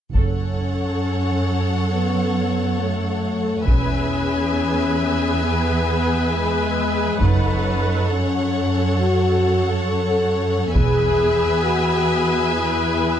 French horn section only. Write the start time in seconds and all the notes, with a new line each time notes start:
0.14 C#4
1.91 B3
2.79 A3
3.68 C#4
5.45 B3
6.34 G#3
7.21 D#4
8.11 C#4
8.98 F#4
9.86 A4
10.74 G#4
11.62 F#4
12.53 E4